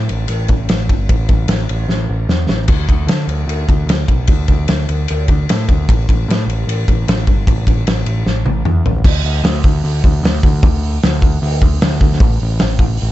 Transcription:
0.09 picked electric bass A1, ride
0.28 picked electric bass A1, ride
0.48 picked electric bass A1, kick, ride
0.69 picked electric bass A1, snare, ride
0.89 picked electric bass G1, kick, ride
1.09 picked electric bass A1, kick, ride
1.29 picked electric bass A1, kick, ride
1.48 picked electric bass A1, snare, ride
1.69 picked electric bass A1, ride
1.88 picked electric bass A1, snare
2.09 picked electric bass A1
2.29 picked electric bass E2, snare
2.48 picked electric bass A1, snare
2.68 picked electric bass D2, kick, ride, crash
2.89 picked electric bass D2, kick, ride
3.07 picked electric bass D3, snare, ride
3.27 picked electric bass D2, ride
3.47 picked electric bass D2, ride
3.69 picked electric bass D2, kick, ride
3.86 picked electric bass D2, snare, ride
4.08 picked electric bass B1, kick, ride
4.27 picked electric bass D2, kick, ride
4.48 picked electric bass D2, kick, ride
4.68 picked electric bass D2, snare, ride
4.89 picked electric bass D2, ride
5.08 picked electric bass D2, ride
5.28 picked electric bass D2, kick, ride
5.49 picked electric bass A2, snare, ride
5.69 picked electric bass D2, kick, ride
5.89 picked electric bass A1, kick, ride
6.09 picked electric bass A1, kick, ride
6.28 picked electric bass A2, snare, ride
6.46 picked electric bass A1, ride
6.67 picked electric bass A1, ride
6.88 picked electric bass A1, kick, ride
7.08 picked electric bass A1, snare, ride
7.27 picked electric bass G1, kick, ride
7.47 picked electric bass A1, kick, ride
7.67 picked electric bass A1, kick, ride
7.87 picked electric bass A1, snare, ride
8.06 picked electric bass A1, ride
8.26 picked electric bass A1, snare
8.45 picked electric bass A1, high tom
8.65 picked electric bass E2, mid tom
8.84 picked electric bass A1, floor tom
9.04 picked electric bass D2, kick, crash
9.24 picked electric bass D2, open hi-hat
9.44 picked electric bass D2, snare, open hi-hat
9.64 picked electric bass D2, kick, open hi-hat
9.84 picked electric bass D2, open hi-hat
10.04 picked electric bass D2, kick, open hi-hat
10.23 picked electric bass D2, snare, open hi-hat
10.43 picked electric bass D2, kick, open hi-hat
10.62 picked electric bass D2, kick, open hi-hat
10.83 open hi-hat
11.03 picked electric bass D2, snare, open hi-hat
11.22 kick, open hi-hat
11.42 picked electric bass D2, open hi-hat
11.62 picked electric bass D2, kick, open hi-hat
11.81 picked electric bass D2, snare, open hi-hat
12.01 picked electric bass D2, kick, open hi-hat
12.12 snare
12.20 picked electric bass A1, kick, open hi-hat
12.40 picked electric bass A1, open hi-hat
12.59 picked electric bass A1, snare, open hi-hat
12.79 picked electric bass A1, kick, open hi-hat
12.97 open hi-hat
13.02 picked electric bass A1

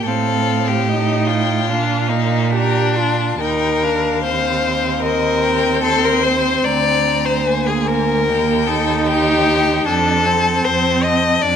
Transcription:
0.05 cello A2, viola C4, violin A4 F5
0.67 violin G4
0.88 viola D#4, violin D#5
1.27 violin F4 G5
1.69 cello A#2, viola D4, violin F5
2.09 viola A#3, violin D#4
2.50 violin D4 A#5, viola G4
2.96 viola F4, violin A5
3.40 cello D#2, viola D#4, violin A#4 G5
3.83 viola D4, violin F5
4.23 viola C4, violin C5
5.02 violin A#4 D#5
5.44 violin G5
5.83 violin A4 C6
6.04 violin A#4
6.23 violin C5
6.64 cello D2, violin D5 A#5
7.25 violin C5
7.46 viola A#3, violin G#5
7.66 violin G#4
7.87 violin A#4
8.27 cello D#2, viola A#3, violin G5
8.67 viola D#4, violin A4
9.07 violin G4 G5
9.86 cello F2, viola D4, violin A4
10.26 viola C4, violin A5
10.65 cello F2, violin C5
11.04 violin D#5 A5
11.42 cello F2, viola D4, violin D5

